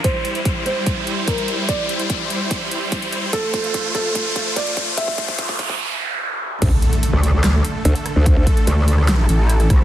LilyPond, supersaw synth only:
\new Staff \with { instrumentName = "Supersaw synth" } { \time 4/4 \key c \mixolydian \tempo 4 = 146 << { c''1~ | c''1~ | c''1~ | c''2 r2 |
a'1~ | a'1 | } \\ { <g e'>1~ | <g e'>1 | f'1~ | f'2 r2 |
<d a>1~ | <d a>1 | } >> }